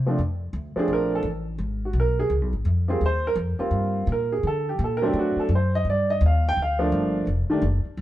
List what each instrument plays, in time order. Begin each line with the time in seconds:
Already playing: upright bass C3
0.06 upright piano A#2 F3 A3 C4 D4
0.19 upright bass F2
0.53 upright bass D2
0.76 upright piano F3 A3 C4 D4 G#4, muted upright bass stroke
0.88 upright bass A#1
0.93 upright piano A#4
1.15 upright piano A4
1.23 upright bass A1
1.58 upright bass G#1
1.85 upright piano F#4
1.93 upright bass B1
2.00 upright piano A#4
2.19 upright piano G#4
2.30 upright bass C#2
2.41 upright bass B1
2.53 upright bass G#1
2.65 upright bass F2
2.88 upright piano G3 A#3 C4 F4 G#4
3.01 upright bass D#2
3.06 upright piano C5
3.27 upright piano A#4
3.36 upright bass F2
3.59 upright piano G3 A#3 C4 F4, muted upright bass stroke
3.71 upright bass G2
4.07 upright bass A#2
4.12 upright piano A#4
4.32 upright piano G#4
4.43 upright bass D3, upright piano A4
4.69 upright piano G4
4.79 upright bass A#2
4.84 upright piano A4
4.97 upright piano A#4
5.02 upright piano F#3 A3 C4 D4
5.07 upright piano G4
5.13 upright bass A2
5.19 upright piano F#4
5.36 upright piano A4, muted upright bass stroke
5.49 upright bass F#2
5.55 upright piano C5
5.75 upright piano D#5
5.85 upright bass G2
5.90 upright piano D5
6.10 upright piano D#5
6.21 upright bass D#2
6.26 upright piano F5
6.49 upright piano G5
6.56 upright bass D2
6.62 upright piano F5
6.79 upright piano F3 A3 A#3 D4
6.92 upright bass G1
7.27 upright bass F1
7.50 upright piano D#3 G3 A3 D4, muted upright bass stroke
7.62 upright bass F#1
7.85 muted upright bass stroke
7.97 upright bass G1